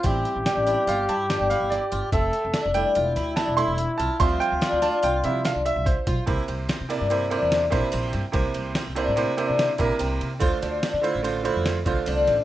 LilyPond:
<<
  \new Staff \with { instrumentName = "Flugelhorn" } { \time 5/4 \key c \mixolydian \tempo 4 = 145 g'1~ g'4 | a'4. r8 e'2. | f'1~ f'8 r8 | r1 r4 |
r1 r4 | r1 r4 | }
  \new Staff \with { instrumentName = "Grand piano" } { \time 5/4 \key c \mixolydian c''8 r8 g''4 f''8 a''8 g''8 f''8 d''4 | e''4. g''4. a''8 c'''8 r8 a''8 | c'''8 g''4 a''8 g''8 e''8 f''8 e''8 c''4 | <c bes e' c''>4 r8 <c bes e' d''>8 <c bes e' c''>8 <c bes e' c''>4 <c bes e' c''>4 r8 |
<c bes e' c''>4 r8 <c bes e' c''>8 <c bes e' c''>8 <c bes e' c''>4 <c bes e' bes'>4 r8 | <d a f' c''>4 r8 <d a f' c''>8 <d a f' c''>8 <d a f' c''>4 <d a f' c''>4 r8 | }
  \new Staff \with { instrumentName = "Grand piano" } { \time 5/4 \key c \mixolydian <g c' e'>4. <g c' e'>8 r2. | r4. <g a e'>8 r4. <g a e'>8 r4 | <f g c' e''>4. r4 <f g c' e'>8 r2 | r1 r4 |
r1 r4 | r1 r4 | }
  \new Staff \with { instrumentName = "Twelve-string acoustic guitar" } { \time 5/4 \key c \mixolydian c'4 d'8 d'8 f'8 e'8 d'8 e'4 f'8 | c'4 d'8 d'8 f'8 e'8 d'8 e'4 f'8 | c'4 d'8 d'8 f'8 e'8 d'8 e''4 f'8 | e'8 c'8 c'8 d'8 e'8 d'4 e'8 c'4 |
e'8 c'8 c'8 d'8 e'8 d'4 e'8 c'4 | f'8 d'8 d'8 e'8 f'8 e'4 f'8 d'4 | }
  \new Staff \with { instrumentName = "Upright bass" } { \clef bass \time 5/4 \key c \mixolydian a,,8 r16 a,,16 r16 a,,8 r16 g,,8 g,8. g,,8 g,,8 r16 g,,16 r16 | f,,8 r16 f,,16 r16 f,,8 r16 e,,8 d,8. e,,8 e,,8 r16 c,16 r16 | d,8 r16 d,16 r16 d,8 r16 c,8 c8. c,8 c,8 r16 b,,16 r16 | c,16 r16 c,8 r16 c8 g,4 e,8. bes,,16 r16 bes,,8 g,16 r16 |
c,16 r16 c,8 r16 c,8 a,8 r8 c8 r16 bes,,16 r16 c,8 c8 | d,16 r16 d,8 r16 d8 a,,4 f,8. c,16 r16 c,8 a,,16 r16 | }
  \new DrumStaff \with { instrumentName = "Drums" } \drummode { \time 5/4 <hh bd>8 hh8 <hh sn>8 hh8 <hh sn>8 hh8 <hh sn>8 <hh sn>8 <hh sn>8 hh8 | <hh bd>8 hh8 <hh sn>8 hh8 hh8 <hh sn>8 <hh sn>8 hh8 hh8 hh8 | <hh bd>8 hh8 <hh sn>8 <hh sn>8 hh8 hh8 <hh sn>8 hh8 <hh bd sn>8 <hh bd>8 | <bd cymr>8 cymr8 <cymr sn>8 cymr8 cymr8 cymr8 <cymr sn>8 <bd cymr sn>8 cymr8 <cymr sn>8 |
<bd cymr>8 cymr8 <cymr sn>8 cymr8 cymr8 cymr8 <cymr sn>8 <bd cymr>8 cymr8 cymr8 | <bd cymr>8 <cymr sn>8 <cymr sn>8 cymr8 cymr8 cymr8 <cymr sn>8 <bd cymr>8 cymr8 <cymr sn>8 | }
>>